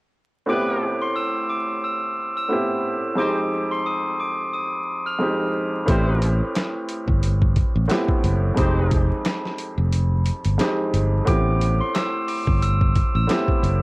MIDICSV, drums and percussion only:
0, 0, Header, 1, 2, 480
1, 0, Start_track
1, 0, Tempo, 674157
1, 346, Time_signature, 4, 2, 24, 8
1, 9840, End_track
2, 0, Start_track
2, 0, Title_t, "Drums"
2, 4185, Note_on_c, 9, 42, 84
2, 4187, Note_on_c, 9, 36, 105
2, 4257, Note_off_c, 9, 42, 0
2, 4258, Note_off_c, 9, 36, 0
2, 4427, Note_on_c, 9, 42, 74
2, 4498, Note_off_c, 9, 42, 0
2, 4667, Note_on_c, 9, 42, 90
2, 4674, Note_on_c, 9, 38, 106
2, 4674, Note_on_c, 9, 39, 87
2, 4738, Note_off_c, 9, 42, 0
2, 4745, Note_off_c, 9, 38, 0
2, 4745, Note_off_c, 9, 39, 0
2, 4904, Note_on_c, 9, 42, 65
2, 4975, Note_off_c, 9, 42, 0
2, 5040, Note_on_c, 9, 36, 94
2, 5111, Note_off_c, 9, 36, 0
2, 5148, Note_on_c, 9, 42, 98
2, 5219, Note_off_c, 9, 42, 0
2, 5281, Note_on_c, 9, 36, 93
2, 5352, Note_off_c, 9, 36, 0
2, 5382, Note_on_c, 9, 42, 69
2, 5387, Note_on_c, 9, 36, 91
2, 5454, Note_off_c, 9, 42, 0
2, 5458, Note_off_c, 9, 36, 0
2, 5622, Note_on_c, 9, 42, 92
2, 5634, Note_on_c, 9, 38, 111
2, 5635, Note_on_c, 9, 39, 90
2, 5693, Note_off_c, 9, 42, 0
2, 5706, Note_off_c, 9, 38, 0
2, 5706, Note_off_c, 9, 39, 0
2, 5757, Note_on_c, 9, 36, 90
2, 5829, Note_off_c, 9, 36, 0
2, 5867, Note_on_c, 9, 42, 72
2, 5938, Note_off_c, 9, 42, 0
2, 6105, Note_on_c, 9, 42, 84
2, 6106, Note_on_c, 9, 36, 109
2, 6176, Note_off_c, 9, 42, 0
2, 6177, Note_off_c, 9, 36, 0
2, 6346, Note_on_c, 9, 42, 74
2, 6350, Note_on_c, 9, 36, 93
2, 6418, Note_off_c, 9, 42, 0
2, 6421, Note_off_c, 9, 36, 0
2, 6585, Note_on_c, 9, 42, 92
2, 6592, Note_on_c, 9, 38, 107
2, 6593, Note_on_c, 9, 39, 86
2, 6656, Note_off_c, 9, 42, 0
2, 6664, Note_off_c, 9, 38, 0
2, 6664, Note_off_c, 9, 39, 0
2, 6731, Note_on_c, 9, 38, 34
2, 6802, Note_off_c, 9, 38, 0
2, 6823, Note_on_c, 9, 42, 65
2, 6894, Note_off_c, 9, 42, 0
2, 7066, Note_on_c, 9, 42, 100
2, 7137, Note_off_c, 9, 42, 0
2, 7302, Note_on_c, 9, 42, 69
2, 7373, Note_off_c, 9, 42, 0
2, 7437, Note_on_c, 9, 42, 55
2, 7508, Note_off_c, 9, 42, 0
2, 7541, Note_on_c, 9, 42, 89
2, 7553, Note_on_c, 9, 38, 114
2, 7553, Note_on_c, 9, 39, 91
2, 7612, Note_off_c, 9, 42, 0
2, 7624, Note_off_c, 9, 38, 0
2, 7625, Note_off_c, 9, 39, 0
2, 7787, Note_on_c, 9, 42, 73
2, 7858, Note_off_c, 9, 42, 0
2, 8024, Note_on_c, 9, 42, 84
2, 8027, Note_on_c, 9, 36, 110
2, 8095, Note_off_c, 9, 42, 0
2, 8098, Note_off_c, 9, 36, 0
2, 8268, Note_on_c, 9, 42, 75
2, 8339, Note_off_c, 9, 42, 0
2, 8506, Note_on_c, 9, 42, 91
2, 8514, Note_on_c, 9, 38, 110
2, 8514, Note_on_c, 9, 39, 90
2, 8578, Note_off_c, 9, 42, 0
2, 8585, Note_off_c, 9, 38, 0
2, 8585, Note_off_c, 9, 39, 0
2, 8745, Note_on_c, 9, 46, 49
2, 8816, Note_off_c, 9, 46, 0
2, 8880, Note_on_c, 9, 36, 93
2, 8951, Note_off_c, 9, 36, 0
2, 8989, Note_on_c, 9, 42, 99
2, 9060, Note_off_c, 9, 42, 0
2, 9122, Note_on_c, 9, 36, 95
2, 9193, Note_off_c, 9, 36, 0
2, 9224, Note_on_c, 9, 42, 68
2, 9228, Note_on_c, 9, 36, 92
2, 9295, Note_off_c, 9, 42, 0
2, 9299, Note_off_c, 9, 36, 0
2, 9464, Note_on_c, 9, 42, 86
2, 9476, Note_on_c, 9, 38, 114
2, 9476, Note_on_c, 9, 39, 93
2, 9535, Note_off_c, 9, 42, 0
2, 9547, Note_off_c, 9, 38, 0
2, 9548, Note_off_c, 9, 39, 0
2, 9599, Note_on_c, 9, 36, 93
2, 9670, Note_off_c, 9, 36, 0
2, 9710, Note_on_c, 9, 42, 70
2, 9781, Note_off_c, 9, 42, 0
2, 9840, End_track
0, 0, End_of_file